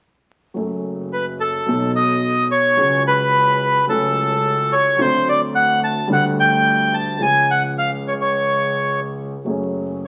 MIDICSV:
0, 0, Header, 1, 4, 480
1, 0, Start_track
1, 0, Key_signature, 3, "minor"
1, 0, Tempo, 553506
1, 489, Time_signature, 4, 2, 24, 8
1, 5765, Tempo, 560224
1, 8697, End_track
2, 0, Start_track
2, 0, Title_t, "Bandoneon"
2, 0, Program_c, 0, 23
2, 979, Note_on_c, 0, 71, 55
2, 1087, Note_off_c, 0, 71, 0
2, 1216, Note_on_c, 0, 69, 55
2, 1663, Note_off_c, 0, 69, 0
2, 1697, Note_on_c, 0, 75, 62
2, 2145, Note_off_c, 0, 75, 0
2, 2180, Note_on_c, 0, 73, 66
2, 2625, Note_off_c, 0, 73, 0
2, 2664, Note_on_c, 0, 71, 74
2, 3341, Note_off_c, 0, 71, 0
2, 3376, Note_on_c, 0, 69, 69
2, 4096, Note_on_c, 0, 73, 65
2, 4112, Note_off_c, 0, 69, 0
2, 4338, Note_off_c, 0, 73, 0
2, 4345, Note_on_c, 0, 72, 77
2, 4580, Note_off_c, 0, 72, 0
2, 4587, Note_on_c, 0, 74, 72
2, 4689, Note_off_c, 0, 74, 0
2, 4815, Note_on_c, 0, 78, 76
2, 5032, Note_off_c, 0, 78, 0
2, 5063, Note_on_c, 0, 81, 78
2, 5277, Note_off_c, 0, 81, 0
2, 5315, Note_on_c, 0, 78, 74
2, 5416, Note_off_c, 0, 78, 0
2, 5549, Note_on_c, 0, 79, 76
2, 6017, Note_on_c, 0, 81, 67
2, 6028, Note_off_c, 0, 79, 0
2, 6255, Note_off_c, 0, 81, 0
2, 6258, Note_on_c, 0, 80, 74
2, 6495, Note_off_c, 0, 80, 0
2, 6502, Note_on_c, 0, 78, 66
2, 6605, Note_off_c, 0, 78, 0
2, 6738, Note_on_c, 0, 77, 75
2, 6841, Note_off_c, 0, 77, 0
2, 6990, Note_on_c, 0, 73, 59
2, 7037, Note_off_c, 0, 73, 0
2, 7107, Note_on_c, 0, 73, 59
2, 7782, Note_off_c, 0, 73, 0
2, 8697, End_track
3, 0, Start_track
3, 0, Title_t, "Grand piano"
3, 0, Program_c, 1, 0
3, 469, Note_on_c, 1, 54, 43
3, 480, Note_on_c, 1, 57, 32
3, 486, Note_on_c, 1, 42, 41
3, 490, Note_on_c, 1, 61, 30
3, 503, Note_on_c, 1, 69, 38
3, 1404, Note_off_c, 1, 57, 0
3, 1407, Note_off_c, 1, 42, 0
3, 1407, Note_off_c, 1, 54, 0
3, 1409, Note_off_c, 1, 61, 0
3, 1415, Note_off_c, 1, 69, 0
3, 1441, Note_on_c, 1, 54, 37
3, 1453, Note_on_c, 1, 59, 34
3, 1459, Note_on_c, 1, 35, 42
3, 1463, Note_on_c, 1, 47, 46
3, 1464, Note_on_c, 1, 63, 34
3, 1476, Note_on_c, 1, 69, 44
3, 2362, Note_off_c, 1, 54, 0
3, 2368, Note_off_c, 1, 59, 0
3, 2371, Note_off_c, 1, 35, 0
3, 2373, Note_off_c, 1, 47, 0
3, 2374, Note_off_c, 1, 63, 0
3, 2380, Note_off_c, 1, 69, 0
3, 2396, Note_on_c, 1, 54, 37
3, 2409, Note_on_c, 1, 56, 37
3, 2411, Note_on_c, 1, 37, 42
3, 2414, Note_on_c, 1, 49, 44
3, 2417, Note_on_c, 1, 61, 37
3, 2427, Note_on_c, 1, 68, 41
3, 3314, Note_off_c, 1, 54, 0
3, 3320, Note_off_c, 1, 56, 0
3, 3321, Note_off_c, 1, 37, 0
3, 3323, Note_off_c, 1, 49, 0
3, 3324, Note_off_c, 1, 61, 0
3, 3329, Note_off_c, 1, 68, 0
3, 3358, Note_on_c, 1, 54, 43
3, 3371, Note_on_c, 1, 57, 38
3, 3376, Note_on_c, 1, 37, 48
3, 3378, Note_on_c, 1, 49, 44
3, 3383, Note_on_c, 1, 61, 38
3, 3392, Note_on_c, 1, 69, 45
3, 4272, Note_off_c, 1, 54, 0
3, 4279, Note_off_c, 1, 57, 0
3, 4281, Note_off_c, 1, 37, 0
3, 4282, Note_off_c, 1, 49, 0
3, 4284, Note_off_c, 1, 61, 0
3, 4289, Note_off_c, 1, 69, 0
3, 4307, Note_on_c, 1, 54, 42
3, 4322, Note_on_c, 1, 60, 35
3, 4325, Note_on_c, 1, 38, 52
3, 4325, Note_on_c, 1, 50, 48
3, 4330, Note_on_c, 1, 62, 39
3, 4339, Note_on_c, 1, 69, 41
3, 5225, Note_off_c, 1, 54, 0
3, 5232, Note_off_c, 1, 60, 0
3, 5233, Note_off_c, 1, 50, 0
3, 5234, Note_off_c, 1, 38, 0
3, 5236, Note_off_c, 1, 62, 0
3, 5241, Note_off_c, 1, 69, 0
3, 5268, Note_on_c, 1, 55, 46
3, 5279, Note_on_c, 1, 57, 40
3, 5285, Note_on_c, 1, 50, 54
3, 5287, Note_on_c, 1, 38, 49
3, 5288, Note_on_c, 1, 62, 38
3, 5301, Note_on_c, 1, 69, 48
3, 6185, Note_off_c, 1, 55, 0
3, 6190, Note_off_c, 1, 57, 0
3, 6194, Note_off_c, 1, 38, 0
3, 6194, Note_off_c, 1, 50, 0
3, 6195, Note_off_c, 1, 62, 0
3, 6202, Note_off_c, 1, 69, 0
3, 6222, Note_on_c, 1, 53, 39
3, 6231, Note_on_c, 1, 56, 39
3, 6240, Note_on_c, 1, 37, 44
3, 6242, Note_on_c, 1, 49, 42
3, 6243, Note_on_c, 1, 61, 40
3, 6259, Note_on_c, 1, 68, 42
3, 8059, Note_off_c, 1, 53, 0
3, 8063, Note_off_c, 1, 56, 0
3, 8067, Note_off_c, 1, 37, 0
3, 8068, Note_off_c, 1, 49, 0
3, 8069, Note_off_c, 1, 61, 0
3, 8077, Note_off_c, 1, 68, 0
3, 8158, Note_on_c, 1, 54, 36
3, 8170, Note_on_c, 1, 57, 34
3, 8171, Note_off_c, 1, 54, 0
3, 8173, Note_on_c, 1, 42, 42
3, 8177, Note_on_c, 1, 54, 42
3, 8179, Note_on_c, 1, 61, 31
3, 8192, Note_on_c, 1, 68, 40
3, 8697, Note_off_c, 1, 42, 0
3, 8697, Note_off_c, 1, 54, 0
3, 8697, Note_off_c, 1, 57, 0
3, 8697, Note_off_c, 1, 61, 0
3, 8697, Note_off_c, 1, 68, 0
3, 8697, End_track
4, 0, Start_track
4, 0, Title_t, "Double bass"
4, 0, Program_c, 2, 43
4, 495, Note_on_c, 2, 30, 50
4, 1411, Note_off_c, 2, 30, 0
4, 1458, Note_on_c, 2, 35, 58
4, 2371, Note_off_c, 2, 35, 0
4, 2419, Note_on_c, 2, 37, 55
4, 3325, Note_off_c, 2, 37, 0
4, 3368, Note_on_c, 2, 37, 62
4, 4277, Note_off_c, 2, 37, 0
4, 4323, Note_on_c, 2, 38, 51
4, 5233, Note_off_c, 2, 38, 0
4, 5279, Note_on_c, 2, 38, 67
4, 6191, Note_off_c, 2, 38, 0
4, 6234, Note_on_c, 2, 37, 55
4, 8065, Note_off_c, 2, 37, 0
4, 8159, Note_on_c, 2, 30, 54
4, 8697, Note_off_c, 2, 30, 0
4, 8697, End_track
0, 0, End_of_file